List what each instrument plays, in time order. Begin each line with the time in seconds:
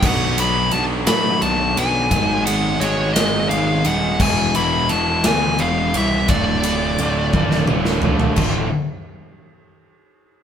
0.02 picked electric bass B1, distorted electric guitar B2 F#3 B3 D4 F#4 B4, kick, crash
0.07 lead electric guitar F#5
0.38 picked electric bass B1, overdriven electric guitar B2 F#3, distorted electric guitar B3 D4 F#4 B4, lead electric guitar B5, ride
0.71 picked electric bass B1, overdriven electric guitar B2 F#3 B3, distorted electric guitar B3 D4 F#4, lead electric guitar A5, ride
0.76 distorted electric guitar B4
1.07 picked electric bass A2, distorted electric guitar B2 F#3 B3 D4 F#4 B4, lead electric guitar B5, snare, ride
1.42 picked electric bass B1, overdriven electric guitar B2 F#3, distorted electric guitar B3 D4 F#4 B4, lead electric guitar A5, ride
1.77 picked electric bass B1, overdriven electric guitar B2 F#3, distorted electric guitar B3 D4 F#4 B4, lead electric guitar G#5, ride
2.11 picked electric bass G#1, distorted electric guitar G#2 D#3 G#3 B3 D#4 G#4, kick, ride
2.46 overdriven electric guitar G#2 D#3, distorted electric guitar G#3 B3 D#4 G#4, lead electric guitar F#5, ride
2.80 picked electric bass G#1, overdriven electric guitar G#2 D#3 G#3, distorted electric guitar G#3 B3 D#4 G#4, lead electric guitar C#5, ride
3.13 picked electric bass G#1, distorted electric guitar D#3 G#3 B3 D#4 G#4, lead electric guitar D#5, snare, ride
3.18 distorted electric guitar G#2
3.49 picked electric bass G#1, overdriven electric guitar G#2 D#3, distorted electric guitar G#3 B3 D#4 G#4, lead electric guitar F5, ride
3.84 picked electric bass D#1, overdriven electric guitar G#2 D#3, distorted electric guitar G#3 B3 D#4 G#4, lead electric guitar F#5, ride
4.19 picked electric bass E1, distorted electric guitar E2 B2 E3 G#3 B3 E4, lead electric guitar G#5, kick, crash
4.54 picked electric bass E1, overdriven electric guitar E2 B2, distorted electric guitar E3 G#3 B3 E4, lead electric guitar B5, ride
4.89 picked electric bass E1, overdriven electric guitar E2 B2 E3, distorted electric guitar E3 G#3 B3 E4, lead electric guitar A5, ride
5.24 picked electric bass D2, distorted electric guitar E2 B2 E3 G#3 B3 E4, lead electric guitar G#5, snare, ride
5.58 picked electric bass E1, overdriven electric guitar E2 B2, distorted electric guitar E3 G#3 B3 E4, lead electric guitar F5, ride
5.94 picked electric bass C2, overdriven electric guitar E2 B2, distorted electric guitar E3 G#3 B3 E4, lead electric guitar E5, ride
6.28 picked electric bass D1, distorted electric guitar D2 A2 D3 A3 F4, lead electric guitar D5, kick, ride
6.63 overdriven electric guitar D2 A2, distorted electric guitar D3 A3 F4, ride
6.98 picked electric bass D1, overdriven electric guitar D2 A2 D3, distorted electric guitar A2 D3 A3 F4, ride
7.33 picked electric bass D1, distorted electric guitar D2 A2 D3 A3 F4, kick, high tom
7.51 snare
7.67 picked electric bass D1, overdriven electric guitar D2, distorted electric guitar A2 D3 A3 F4, mid tom
7.85 snare
8.02 picked electric bass C2, overdriven electric guitar D2 A2, distorted electric guitar F4, floor tom
8.06 distorted electric guitar D3 A3
8.20 floor tom
8.36 picked electric bass D1, distorted electric guitar D2 A2, overdriven electric guitar A3 F4, kick, crash
8.40 distorted electric guitar D3